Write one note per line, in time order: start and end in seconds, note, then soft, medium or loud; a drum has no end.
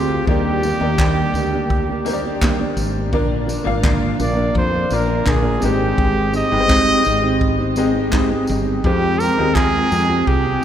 0.00 0.21 D2 loud
0.00 0.30 G#3 medium
0.00 0.30 C4 soft
0.00 0.29 F4 soft
0.00 0.29 F4 medium
0.00 0.26 G4 loud
0.00 0.29 G4 medium
0.00 0.30 C5 medium
0.27 0.72 D#2 medium
0.27 0.64 D#3 medium
0.27 0.64 G3 medium
0.27 0.71 A#3 medium
0.27 0.65 A#3 medium
0.27 0.71 D#4 medium
0.27 2.73 G4 loud
0.27 0.72 G4 medium
0.27 0.72 D5 medium
0.27 kick loud
0.31 0.65 D4 medium
0.31 0.65 G4 medium
0.63 0.82 G3 medium
0.63 0.82 A#3 medium
0.63 0.82 D4 medium
0.63 tambourine medium
0.68 0.81 G4 medium
0.80 1.25 D#2 medium
0.80 1.82 A#3 medium
0.80 1.00 D4 soft
0.80 1.82 D#4 medium
0.80 1.83 G4 medium
0.80 1.00 G4 medium
0.80 1.83 D5 medium
0.84 0.99 A#3 soft
0.99 1.35 D#3 medium
0.99 1.35 G3 medium
0.99 1.35 A#3 medium
0.99 1.36 D4 medium
0.99 1.36 G4 medium
0.99 kick loud
0.99 clap loud
1.34 2.73 D2 medium
1.34 1.53 G3 medium
1.34 1.53 A#3 medium
1.34 1.53 D4 medium
1.34 1.52 G4 medium
1.34 tambourine medium
1.53 1.90 A#3 medium
1.53 1.89 D4 medium
1.53 1.88 G4 medium
1.70 kick loud
1.90 2.06 A#3 soft
1.90 2.07 D4 soft
1.90 2.07 G4 medium
2.05 2.24 G3 medium
2.05 2.93 A#3 medium
2.05 2.25 A#3 medium
2.05 2.25 D4 medium
2.05 2.93 D#4 medium
2.05 2.93 G4 medium
2.05 2.13 C5 medium
2.05 tambourine medium
2.09 2.24 G4 medium
2.13 2.97 D5 medium
2.25 2.42 A#3 soft
2.25 2.42 D4 soft
2.25 2.42 G4 medium
2.42 2.60 D#3 medium
2.42 2.60 G3 medium
2.42 2.60 A#3 medium
2.42 2.60 D4 medium
2.42 2.58 G4 medium
2.42 kick loud
2.42 clap loud
2.60 3.13 A#3 soft
2.60 3.13 D4 medium
2.60 3.13 G4 medium
2.77 3.13 G#1 medium
2.77 tambourine medium
3.12 3.57 A#1 loud
3.12 3.49 A#2 medium
3.12 3.49 D3 medium
3.12 3.45 F3 medium
3.12 3.57 A#3 medium
3.12 3.46 A#3 medium
3.12 3.57 D4 medium
3.12 3.47 D4 loud
3.12 3.57 F4 medium
3.12 3.48 A#4 medium
3.12 3.58 D5 loud
3.12 kick loud
3.46 3.66 F3 medium
3.46 3.65 A#3 medium
3.46 3.64 D4 medium
3.46 3.63 A#4 medium
3.46 tambourine medium
3.64 4.10 G#1 medium
3.64 3.82 F3 soft
3.64 4.67 A#3 medium
3.64 3.82 A#3 medium
3.64 4.67 D4 medium
3.64 3.83 D4 medium
3.64 4.68 F4 medium
3.64 3.83 A#4 medium
3.64 4.68 F5 loud
3.83 4.19 A#2 medium
3.83 4.20 D3 medium
3.83 4.18 F3 medium
3.83 4.19 A#3 medium
3.83 4.20 D4 loud
3.83 4.20 A#4 medium
3.83 kick loud
3.83 clap loud
4.20 4.49 A#1 medium
4.20 4.37 F3 medium
4.20 4.36 A#3 medium
4.20 4.36 D4 medium
4.20 4.35 A#4 medium
4.20 4.54 D5 medium
4.20 tambourine medium
4.36 4.74 F3 soft
4.36 4.73 A#3 medium
4.36 4.73 D4 medium
4.36 4.72 A#4 medium
4.55 4.85 F2 loud
4.55 4.96 C5 medium
4.55 kick loud
4.74 4.88 F3 soft
4.74 4.89 A#3 soft
4.74 4.90 D4 soft
4.74 4.90 A#4 soft
4.89 5.21 A#1 medium
4.89 5.08 F3 medium
4.89 5.08 A#3 medium
4.89 5.63 A#3 medium
4.89 5.07 D4 medium
4.89 5.63 D4 medium
4.89 5.64 F4 medium
4.89 5.06 A#4 medium
4.89 5.64 D5 medium
4.89 tambourine medium
4.94 5.30 A#4 medium
5.07 5.25 F3 soft
5.07 5.25 A#3 soft
5.07 5.25 D4 soft
5.07 5.26 A#4 medium
5.25 5.56 A#1 medium
5.25 5.44 A#2 medium
5.25 5.44 D3 medium
5.25 5.44 F3 medium
5.25 5.43 A#3 medium
5.25 5.43 D4 medium
5.25 5.66 G#4 medium
5.25 5.42 A#4 medium
5.25 kick loud
5.25 clap loud
5.43 5.59 F3 soft
5.43 5.60 A#3 soft
5.43 5.60 D4 medium
5.43 5.61 A#4 medium
5.60 5.92 G#1 loud
5.60 6.32 G#3 medium
5.60 6.36 G#3 medium
5.60 6.32 C4 medium
5.60 6.32 D#4 medium
5.60 6.34 G4 medium
5.60 tambourine medium
5.64 6.36 D#4 medium
5.64 6.35 G4 loud
5.64 6.37 G4 medium
5.64 6.37 C5 medium
5.98 6.42 G#1 medium
5.98 kick loud
6.32 6.51 G#3 medium
6.32 6.51 C4 medium
6.32 6.51 D#4 medium
6.32 6.49 G4 medium
6.32 tambourine medium
6.36 7.75 D#5 loud
6.50 6.96 G1 medium
6.50 7.54 G#3 medium
6.50 6.68 C4 soft
6.50 7.54 D#4 medium
6.50 6.68 D#4 soft
6.50 6.69 G4 medium
6.50 7.54 G4 medium
6.50 6.59 B4 medium
6.60 7.58 C5 medium
6.68 7.04 G#3 medium
6.68 7.05 C4 medium
6.68 7.04 D#4 medium
6.68 7.05 G4 medium
6.68 kick loud
6.68 clap loud
7.05 8.45 G#1 loud
7.05 7.21 G4 medium
7.05 tambourine medium
7.22 7.59 C4 medium
7.22 7.59 D#4 medium
7.22 7.57 G4 medium
7.41 kick loud
7.58 7.76 C4 medium
7.58 7.77 D#4 soft
7.58 7.77 G4 medium
7.76 7.95 G#3 medium
7.76 8.65 G#3 medium
7.76 7.95 C4 medium
7.76 8.65 D#4 medium
7.76 7.94 D#4 medium
7.76 8.65 G4 medium
7.76 7.93 G4 medium
7.76 8.65 D#5 loud
7.76 tambourine medium
7.94 8.11 C4 soft
7.94 8.12 D#4 medium
7.94 8.12 G4 medium
8.11 8.30 G#3 medium
8.11 8.30 C4 medium
8.11 8.31 D#4 medium
8.11 8.30 G4 loud
8.11 kick loud
8.11 clap loud
8.31 8.84 C4 medium
8.31 8.85 D#4 medium
8.31 8.85 G4 medium
8.47 8.79 G1 loud
8.47 tambourine medium
8.84 9.29 F2 loud
8.84 9.20 F3 medium
8.84 9.28 G#3 medium
8.84 9.20 G#3 medium
8.84 9.20 C4 medium
8.84 9.29 F4 medium
8.84 9.21 F4 medium
8.84 9.22 G4 loud
8.84 9.21 G4 medium
8.84 9.29 G4 medium
8.84 9.29 C5 medium
8.84 kick loud
9.20 9.39 G#3 medium
9.20 9.39 C4 medium
9.20 9.38 F4 medium
9.20 9.37 G4 medium
9.20 9.56 A#4 loud
9.20 tambourine medium
9.38 9.83 D#2 medium
9.38 10.40 G#3 medium
9.38 9.55 C4 soft
9.38 10.40 F4 medium
9.38 9.55 F4 medium
9.38 9.56 G4 medium
9.38 10.41 D#5 medium
9.38 10.40 G5 medium
9.55 9.92 F3 medium
9.55 9.89 G#3 medium
9.55 9.90 C4 medium
9.55 9.91 F4 medium
9.55 10.29 G#4 loud
9.55 kick loud
9.55 clap loud
9.90 10.21 F2 medium
9.90 10.09 G#3 medium
9.90 10.10 C4 medium
9.90 10.08 F4 medium
9.90 10.07 G4 medium
9.90 tambourine medium
10.08 10.45 C4 soft
10.08 10.45 F4 medium
10.08 10.43 G4 medium
10.27 10.57 C2 loud
10.27 10.64 G4 medium
10.27 kick loud
10.44 10.63 C4 soft
10.44 10.63 F4 medium
10.44 10.63 G4 medium